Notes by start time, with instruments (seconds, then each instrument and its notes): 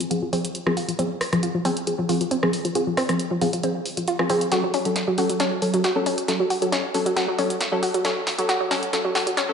0.00 synth arpeggio sound F3, closed hi-hat
0.11 synth stab F3 C4 G#4, synth arpeggio sound F4, closed hi-hat
0.22 synth arpeggio sound F3
0.33 synth stab F3 C4 G#4, synth arpeggio sound C4, open hi-hat
0.45 closed hi-hat
0.55 closed hi-hat
0.66 synth arpeggio sound F3, synth stab F3 C4 G#4, cross-stick
0.77 synth arpeggio sound F4, open hi-hat
0.88 synth arpeggio sound F3, closed hi-hat
0.99 synth stab F3 C4 G#4, synth arpeggio sound C4, closed hi-hat
1.21 cross-stick, open hi-hat
1.33 synth arpeggio sound F3, synth stab F3 C4 G#4, cross-stick, closed hi-hat
1.43 synth arpeggio sound F4, closed hi-hat
1.55 synth arpeggio sound F3
1.65 synth stab F3 C4 G#4, synth arpeggio sound C4, open hi-hat
1.77 closed hi-hat
1.87 synth stab F3 C4 G#4, closed hi-hat
1.99 synth arpeggio sound F3
2.09 synth stab F3 C4 G#4, synth arpeggio sound F4, open hi-hat
2.21 synth arpeggio sound F3, closed hi-hat
2.31 synth arpeggio sound C4, closed hi-hat
2.43 synth stab F3 C4 G#4, cross-stick
2.53 open hi-hat
2.65 synth arpeggio sound F3, closed hi-hat
2.75 synth stab F3 C4 G#4, synth arpeggio sound F4, closed hi-hat
2.87 synth arpeggio sound F3
2.97 synth arpeggio sound C4, cross-stick, open hi-hat
3.09 synth stab F3 C4 G#4, cross-stick, closed hi-hat
3.19 closed hi-hat
3.31 synth arpeggio sound F3
3.41 synth stab F3 C4 G#4, synth arpeggio sound F4, open hi-hat
3.53 synth arpeggio sound F3, closed hi-hat
3.63 synth stab F3 C4 G#4, synth arpeggio sound C4, closed hi-hat
3.86 open hi-hat
3.97 synth arpeggio sound F3, closed hi-hat
4.08 synth arpeggio sound F4, closed hi-hat
4.19 synth stab F3 C4 G#4, synth arpeggio sound F3, cross-stick
4.30 synth stab F3 C4 G#4, synth arpeggio sound C4, open hi-hat
4.41 closed hi-hat
4.52 synth stab F#3 C#4 A4, synth arpeggio sound F#4, snare, closed hi-hat
4.64 synth arpeggio sound F#3
4.74 synth arpeggio sound C#4, open hi-hat
4.85 synth stab F#3 C#4 A4, closed hi-hat
4.96 snare, closed hi-hat
5.08 synth arpeggio sound F#3
5.18 synth stab F#3 C#4 A4, synth arpeggio sound F#4, open hi-hat
5.29 synth arpeggio sound F#3, closed hi-hat
5.40 synth stab F#3 C#4 A4, synth arpeggio sound C#4, snare, closed hi-hat
5.62 synth stab F#3 C#4 A4, open hi-hat
5.74 synth arpeggio sound F#3, closed hi-hat
5.84 synth arpeggio sound F#4, snare, closed hi-hat
5.96 synth stab F#3 C#4 A4, synth arpeggio sound F#3
6.06 synth arpeggio sound C#4, open hi-hat
6.18 closed hi-hat
6.28 synth stab F#3 C#4 A4, snare, closed hi-hat
6.40 synth arpeggio sound F#3
6.50 synth arpeggio sound F#4, open hi-hat
6.62 synth arpeggio sound F#3, synth stab F#3 C#4 A4, closed hi-hat
6.72 synth arpeggio sound C#4, snare, closed hi-hat
6.94 synth stab F#3 C#4 A4, open hi-hat
7.06 synth arpeggio sound F#3, closed hi-hat
7.16 synth stab F#3 C#4 A4, synth arpeggio sound F#4, snare, closed hi-hat
7.28 synth arpeggio sound F#3
7.38 synth stab F#3 C#4 A4, synth arpeggio sound C#4, open hi-hat
7.50 closed hi-hat
7.61 snare, closed hi-hat
7.72 synth arpeggio sound F#3, synth stab F#3 C#4 A4
7.83 synth arpeggio sound F#4, open hi-hat
7.94 synth arpeggio sound F#3, closed hi-hat
8.05 synth stab F#3 C#4 A4, synth arpeggio sound C#4, snare, closed hi-hat
8.27 snare, open hi-hat
8.38 synth arpeggio sound F#3, synth stab F#3 C#4 A4, closed hi-hat
8.49 synth arpeggio sound F#4, snare, closed hi-hat
8.61 synth arpeggio sound F#3
8.71 synth stab F#3 C#4 A4, synth arpeggio sound C#4, snare, open hi-hat
8.83 closed hi-hat
8.93 synth stab F#3 C#4 A4, snare, closed hi-hat
9.05 synth arpeggio sound F#3
9.15 synth stab F#3 C#4 A4, synth arpeggio sound F#4, snare, open hi-hat
9.27 synth arpeggio sound F#3, closed hi-hat
9.37 synth arpeggio sound C#4, snare, closed hi-hat
9.49 synth stab F#3 C#4 A4